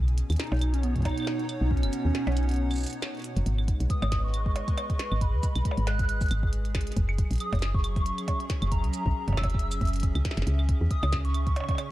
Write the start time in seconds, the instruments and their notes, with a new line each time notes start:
Already playing: fm bass B1, analog synth pad B2 C#4 G#4 G#5
0.08 analog synth pad B3, closed hi-hat
0.18 analog synth pad C#5, closed hi-hat
0.30 fm bass D#2, closed hi-hat, claves
0.32 closed hi-hat
0.36 analog synth pad D#4, soft synth lead D#4, snare, closed hi-hat
0.40 closed hi-hat
0.44 closed hi-hat
0.47 closed hi-hat
0.52 fm bass B1, closed hi-hat, percussion blips
0.54 closed hi-hat
0.57 closed hi-hat
0.59 analog synth pad F#5, closed hi-hat
0.62 closed hi-hat, claves
0.74 soft synth lead C#4, closed hi-hat
0.83 soft synth lead B3, closed hi-hat
0.96 kick, closed hi-hat
0.98 kick
1.00 kick, closed hi-hat
1.03 soft synth lead D#4, kick
1.05 kick, closed hi-hat, percussion blips, claves
1.08 closed hi-hat, claves
1.11 claves
1.15 closed hi-hat, claves
1.20 claves
1.22 claves
1.25 snare, percussion blips, claves
1.40 closed hi-hat
1.49 closed hi-hat, claves
1.61 fm bass B1, soft synth lead D#4
1.71 soft synth lead C#4, kick
1.77 closed hi-hat
1.83 fm bass F#1, closed hi-hat, claves
1.93 closed hi-hat, shaker
2.05 fm bass D#2
2.15 snare, closed hi-hat
2.27 fm bass B1, closed hi-hat, percussion blips, claves
2.32 closed hi-hat
2.37 closed hi-hat
2.43 closed hi-hat
2.49 closed hi-hat
2.51 closed hi-hat
2.54 closed hi-hat
2.56 closed hi-hat
2.71 closed hi-hat, claves, shaker
2.73 shaker
2.76 shaker
2.78 shaker
2.80 shaker
2.83 closed hi-hat, shaker
2.87 shaker
2.90 closed hi-hat, shaker
3.02 snare, closed hi-hat, claves
3.15 closed hi-hat
3.17 closed hi-hat
3.19 closed hi-hat
3.22 closed hi-hat
3.24 closed hi-hat
3.37 fm bass F#1, closed hi-hat
3.46 fm bass G#1, analog synth pad G#3, closed hi-hat
3.54 analog synth pad G#4
3.58 analog synth pad B4 D#5, claves
3.68 kick, closed hi-hat
3.80 fm bass B1, closed hi-hat
3.90 soft synth lead D#6, kick, closed hi-hat
4.02 fm bass G#1, closed hi-hat, percussion blips, claves
4.12 kick, snare, closed hi-hat
4.24 soft synth lead C#6
4.34 closed hi-hat, claves
4.46 kick
4.56 closed hi-hat, percussion blips
4.68 kick, closed hi-hat
4.78 closed hi-hat, percussion blips, claves
4.90 kick, closed hi-hat
4.99 snare, closed hi-hat
5.12 fm bass G#1, claves
5.21 soft synth lead B5, kick, closed hi-hat
5.34 fm bass D#2
5.43 kick, closed hi-hat, shaker
5.55 fm bass B1, closed hi-hat, claves
5.65 kick, closed hi-hat
5.71 percussion blips
5.77 fm bass G#1, closed hi-hat
5.87 soft synth lead F#6, snare, closed hi-hat
5.99 kick, closed hi-hat
6.09 closed hi-hat
6.21 kick, closed hi-hat, shaker
6.24 closed hi-hat
6.26 closed hi-hat
6.28 closed hi-hat
6.31 fm bass G#1, closed hi-hat, claves
6.43 kick
6.53 closed hi-hat
6.65 closed hi-hat
6.75 kick, snare, closed hi-hat, claves
6.81 closed hi-hat
6.87 closed hi-hat
6.92 closed hi-hat
6.96 fm bass F#1, analog synth pad F#3, kick, closed hi-hat
7.09 claves
7.14 analog synth pad C#4
7.18 kick, closed hi-hat
7.31 fm bass A#1, analog synth pad E5, closed hi-hat
7.33 closed hi-hat
7.36 closed hi-hat
7.38 closed hi-hat
7.40 soft synth lead D#6, closed hi-hat, claves
7.53 fm bass F#1, kick, closed hi-hat, percussion blips
7.55 closed hi-hat
7.59 snare, closed hi-hat
7.62 closed hi-hat
7.74 soft synth lead C#6, kick
7.84 closed hi-hat, claves
7.96 kick, closed hi-hat
8.06 closed hi-hat
8.18 closed hi-hat, claves
8.28 kick, closed hi-hat, percussion blips
8.40 closed hi-hat
8.50 kick, snare, closed hi-hat
8.62 fm bass F#1, closed hi-hat, claves
8.72 soft synth lead A#5, kick, closed hi-hat
8.84 fm bass C#2, closed hi-hat
8.94 closed hi-hat, shaker
9.06 fm bass A#1, kick
9.28 fm bass F#1, kick, closed hi-hat, percussion blips
9.30 kick, percussion blips
9.34 soft synth lead E6, kick
9.37 kick, snare, percussion blips, claves
9.41 kick, closed hi-hat, percussion blips
9.45 kick
9.50 closed hi-hat
9.54 kick
9.59 closed hi-hat
9.72 closed hi-hat, claves, shaker
9.81 fm bass F#1, kick, closed hi-hat
9.85 closed hi-hat
9.87 closed hi-hat
9.93 closed hi-hat
9.96 closed hi-hat
10.00 kick, closed hi-hat
10.03 closed hi-hat
10.15 fm bass C#2, closed hi-hat, claves
10.25 kick, snare, closed hi-hat
10.31 snare
10.37 fm bass F#1, snare, closed hi-hat
10.42 snare
10.47 fm bass C#2, analog synth pad C#3, closed hi-hat
10.59 claves
10.69 kick, closed hi-hat
10.81 fm bass E2
10.91 soft synth lead D#6, kick, closed hi-hat
11.03 fm bass C#2, closed hi-hat, percussion blips, claves
11.13 kick, snare, closed hi-hat
11.25 soft synth lead C#6, closed hi-hat
11.34 closed hi-hat, claves
11.47 kick, closed hi-hat
11.55 analog synth pad G#5, closed hi-hat, percussion blips
11.60 percussion blips
11.64 percussion blips
11.69 kick, closed hi-hat, percussion blips
11.71 percussion blips
11.75 closed hi-hat, percussion blips
11.78 percussion blips, claves